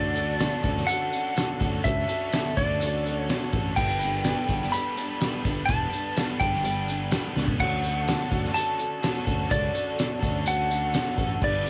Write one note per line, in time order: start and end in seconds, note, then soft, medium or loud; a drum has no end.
0.00 0.48 D2 loud
0.00 0.16 D3 medium
0.00 0.16 C#4 medium
0.00 0.17 D4 medium
0.00 0.17 F#4 medium
0.00 0.15 A4 medium
0.00 11.38 A4 medium
0.00 0.91 D5 medium
0.00 11.38 D5 medium
0.00 3.74 F#5 medium
0.00 3.74 C#6 medium
0.15 0.40 C#4 soft
0.15 0.39 D4 medium
0.15 0.41 F#4 medium
0.15 0.40 A4 medium
0.15 closed hi-hat medium
0.15 shaker medium
0.40 0.64 D3 medium
0.40 0.65 C#4 medium
0.40 0.65 D4 medium
0.40 0.64 F#4 medium
0.40 0.63 A4 medium
0.40 snare loud
0.40 closed hi-hat medium
0.40 shaker loud
0.63 0.83 D2 medium
0.63 0.88 C#4 soft
0.63 0.88 D4 medium
0.63 0.89 F#4 medium
0.63 0.88 A4 medium
0.63 kick medium
0.63 closed hi-hat medium
0.63 shaker medium
0.77 snare soft
0.87 1.13 D3 medium
0.87 1.13 C#4 medium
0.87 1.36 D4 medium
0.87 1.12 F#4 medium
0.87 1.11 A4 medium
0.87 1.87 F#5 medium
0.87 closed hi-hat loud
0.87 shaker medium
1.12 1.35 C#4 soft
1.12 1.37 F#4 soft
1.12 1.37 A4 medium
1.12 closed hi-hat medium
1.12 shaker medium
1.35 1.60 D3 medium
1.35 1.61 C#4 medium
1.35 1.62 D4 medium
1.35 1.61 F#4 medium
1.35 1.59 A4 medium
1.35 snare loud
1.35 closed hi-hat loud
1.35 shaker loud
1.61 1.79 D2 medium
1.61 1.85 C#4 medium
1.61 1.84 D4 medium
1.61 1.86 F#4 medium
1.61 1.85 A4 medium
1.61 kick medium
1.61 closed hi-hat medium
1.61 shaker medium
1.84 2.04 C#2 loud
1.84 2.09 D3 medium
1.84 2.10 C#4 medium
1.84 2.09 D4 medium
1.84 2.10 F#4 medium
1.84 2.09 A4 medium
1.84 2.59 E5 loud
1.84 kick loud
1.84 closed hi-hat loud
1.84 shaker medium
2.09 2.33 D4 medium
2.09 2.34 F#4 soft
2.09 2.34 A4 medium
2.09 closed hi-hat medium
2.09 shaker medium
2.13 2.34 C#4 soft
2.33 2.58 D3 medium
2.33 2.58 C#4 medium
2.33 2.58 D4 medium
2.33 2.58 F#4 medium
2.33 snare loud
2.33 closed hi-hat loud
2.33 shaker medium
2.37 2.57 A4 medium
2.57 3.32 D2 medium
2.57 2.82 C#4 soft
2.57 2.81 D4 medium
2.57 2.82 F#4 soft
2.57 2.82 A4 medium
2.57 3.19 D5 medium
2.57 kick medium
2.57 closed hi-hat medium
2.57 shaker medium
2.81 3.06 D3 medium
2.81 3.06 C#4 medium
2.81 3.29 D4 medium
2.81 3.07 F#4 medium
2.81 3.05 A4 medium
2.81 closed hi-hat loud
2.81 shaker medium
3.06 3.29 C#4 soft
3.06 3.30 F#4 soft
3.06 3.30 A4 medium
3.06 closed hi-hat medium
3.06 shaker medium
3.19 3.49 C#5 medium
3.29 3.54 D3 medium
3.29 3.54 C#4 medium
3.29 3.55 D4 medium
3.29 3.54 F#4 medium
3.29 3.52 A4 medium
3.29 snare loud
3.29 closed hi-hat loud
3.29 shaker medium
3.53 3.72 A1 medium
3.53 3.78 C#4 medium
3.53 3.77 D4 medium
3.53 3.78 F#4 medium
3.53 3.77 A4 medium
3.53 kick medium
3.53 closed hi-hat medium
3.76 4.33 G1 medium
3.76 4.01 G3 medium
3.76 4.02 B3 medium
3.76 4.02 D4 medium
3.76 4.01 A4 loud
3.76 3.99 B4 loud
3.76 4.76 G5 medium
3.76 5.67 G5 medium
3.76 7.56 B5 medium
3.76 kick loud
3.76 crash medium
3.76 shaker medium
4.00 4.25 B3 soft
4.00 4.26 B4 medium
4.00 closed hi-hat medium
4.00 shaker medium
4.04 4.25 D4 soft
4.24 4.49 G3 medium
4.24 4.50 B3 medium
4.24 4.50 D4 medium
4.24 4.48 B4 medium
4.24 snare loud
4.24 closed hi-hat loud
4.24 shaker medium
4.28 4.47 A4 medium
4.48 4.68 G1 medium
4.48 4.73 B3 medium
4.48 4.73 A4 medium
4.48 4.73 B4 medium
4.48 kick medium
4.48 closed hi-hat medium
4.48 shaker medium
4.52 4.72 D4 soft
4.62 snare soft
4.72 4.97 G3 medium
4.72 4.97 B3 medium
4.72 4.97 D4 medium
4.72 4.95 A4 medium
4.72 5.21 B4 loud
4.72 5.65 B5 loud
4.72 closed hi-hat medium
4.72 shaker medium
4.96 5.21 B3 medium
4.96 5.21 D4 soft
4.96 5.21 A4 medium
4.96 closed hi-hat medium
4.96 shaker medium
5.21 5.45 G3 medium
5.21 5.45 B3 medium
5.21 5.46 D4 medium
5.21 5.43 A4 medium
5.21 5.43 B4 medium
5.21 snare loud
5.21 closed hi-hat medium
5.21 shaker loud
5.44 5.63 G1 medium
5.44 5.69 B3 medium
5.44 5.69 D4 soft
5.44 5.69 A4 medium
5.44 5.69 B4 medium
5.44 kick medium
5.44 closed hi-hat medium
5.44 shaker medium
5.66 5.87 E1 medium
5.66 5.93 G3 medium
5.66 6.39 A5 medium
5.66 7.58 A5 medium
5.66 kick loud
5.66 closed hi-hat medium
5.66 shaker loud
5.70 5.92 B3 medium
5.70 5.93 D4 medium
5.70 5.90 A4 medium
5.70 5.91 B4 loud
5.92 6.16 B3 soft
5.92 6.15 D4 soft
5.92 6.16 A4 medium
5.92 6.18 B4 medium
5.92 closed hi-hat medium
5.92 shaker medium
6.15 6.40 G3 medium
6.15 6.40 B3 medium
6.15 6.41 D4 medium
6.15 6.38 A4 medium
6.15 6.40 B4 medium
6.15 snare loud
6.15 closed hi-hat loud
6.15 shaker loud
6.40 7.15 G1 medium
6.40 6.63 B3 soft
6.40 6.63 D4 soft
6.40 6.64 A4 medium
6.40 6.66 B4 medium
6.40 7.32 G5 medium
6.40 kick medium
6.40 closed hi-hat medium
6.40 shaker medium
6.54 snare soft
6.63 6.88 G3 medium
6.63 6.88 B3 medium
6.63 6.88 D4 medium
6.63 6.87 A4 medium
6.63 7.12 B4 medium
6.63 closed hi-hat loud
6.63 shaker medium
6.88 7.12 B3 soft
6.88 7.11 D4 soft
6.88 7.12 A4 medium
6.88 closed hi-hat medium
6.88 shaker medium
7.10 7.35 G3 medium
7.10 7.37 B3 medium
7.10 7.36 D4 medium
7.10 7.34 A4 medium
7.10 7.35 B4 medium
7.10 snare loud
7.10 closed hi-hat loud
7.10 shaker loud
7.35 7.55 C#2 medium
7.35 7.61 B3 medium
7.35 7.60 D4 medium
7.35 7.60 A4 medium
7.35 7.58 B4 medium
7.35 snare medium
7.35 shaker medium
7.48 kick medium
7.59 8.15 D2 loud
7.59 7.84 D3 medium
7.59 7.84 C#4 medium
7.59 7.85 D4 medium
7.59 7.84 F#4 medium
7.59 7.82 A4 medium
7.59 11.37 F#5 medium
7.59 8.54 F#5 medium
7.59 11.38 C#6 medium
7.59 kick medium
7.59 crash medium
7.59 shaker medium
7.83 8.09 C#4 soft
7.83 8.07 D4 medium
7.83 8.08 F#4 medium
7.83 8.08 A4 medium
7.83 closed hi-hat medium
7.83 shaker medium
8.08 8.32 D3 medium
8.08 8.33 C#4 medium
8.08 8.32 D4 medium
8.08 8.32 F#4 medium
8.08 8.30 A4 medium
8.08 snare loud
8.08 closed hi-hat medium
8.08 shaker medium
8.31 8.50 D2 medium
8.31 8.54 C#4 soft
8.31 8.54 D4 medium
8.31 8.55 F#4 medium
8.31 8.55 A4 medium
8.31 kick medium
8.31 closed hi-hat medium
8.31 shaker medium
8.45 snare soft
8.55 8.79 D3 medium
8.55 8.79 C#4 medium
8.55 9.02 D4 medium
8.55 8.79 F#4 medium
8.55 8.77 A4 medium
8.55 9.53 A5 loud
8.55 closed hi-hat loud
8.55 shaker medium
8.78 9.03 C#4 soft
8.78 9.03 F#4 medium
8.78 9.03 A4 medium
8.78 closed hi-hat medium
8.78 shaker medium
9.02 9.27 D3 medium
9.02 9.27 C#4 medium
9.02 9.27 D4 medium
9.02 9.28 F#4 medium
9.02 9.26 A4 medium
9.02 snare loud
9.02 closed hi-hat medium
9.02 shaker loud
9.27 9.46 D2 medium
9.27 9.49 C#4 soft
9.27 9.50 D4 medium
9.27 9.50 F#4 medium
9.27 9.51 A4 medium
9.27 kick medium
9.27 closed hi-hat medium
9.27 shaker medium
9.50 9.70 C#2 loud
9.50 9.74 D3 medium
9.50 9.75 C#4 medium
9.50 9.75 D4 medium
9.50 9.73 F#4 medium
9.50 9.72 A4 medium
9.50 10.49 D5 loud
9.50 kick loud
9.50 closed hi-hat medium
9.50 shaker loud
9.73 9.97 C#4 soft
9.73 9.98 D4 medium
9.73 9.98 F#4 soft
9.73 9.98 A4 medium
9.73 closed hi-hat medium
9.73 shaker medium
9.96 10.21 D3 medium
9.96 10.22 C#4 medium
9.96 10.23 D4 medium
9.96 10.21 F#4 medium
9.96 10.19 A4 medium
9.96 snare loud
9.96 closed hi-hat loud
9.96 shaker medium
10.21 10.96 D2 medium
10.21 10.44 C#4 medium
10.21 10.46 D4 medium
10.21 10.45 F#4 medium
10.21 10.45 A4 medium
10.21 kick medium
10.21 closed hi-hat medium
10.21 shaker medium
10.44 10.69 D3 medium
10.44 10.70 C#4 medium
10.44 10.94 D4 medium
10.44 10.69 F#4 medium
10.44 10.67 A4 medium
10.44 11.45 F#5 medium
10.44 closed hi-hat loud
10.44 shaker medium
10.68 10.92 C#4 soft
10.68 10.93 F#4 soft
10.68 10.93 A4 medium
10.68 closed hi-hat medium
10.68 shaker medium
10.92 11.17 D3 medium
10.92 11.17 C#4 medium
10.92 11.20 D4 medium
10.92 11.17 F#4 medium
10.92 11.15 A4 medium
10.92 snare loud
10.92 closed hi-hat loud
10.92 shaker medium
11.16 11.36 A1 loud
11.16 11.41 C#4 medium
11.16 11.42 D4 medium
11.16 11.41 F#4 medium
11.16 11.41 A4 medium
11.16 kick medium
11.16 closed hi-hat medium
11.16 shaker medium
11.40 11.70 G1 loud
11.40 11.65 G3 medium
11.40 11.64 B3 medium
11.40 11.65 D4 medium
11.40 11.70 G4 medium
11.40 11.63 A4 medium
11.40 11.65 B4 loud
11.40 11.70 D5 medium
11.40 11.70 D5 loud
11.40 11.70 A5 medium
11.40 11.70 B5 medium
11.40 kick loud
11.40 crash loud
11.40 shaker medium
11.64 11.70 B3 medium
11.64 11.70 A4 medium
11.64 11.70 B4 medium
11.64 closed hi-hat medium
11.64 shaker medium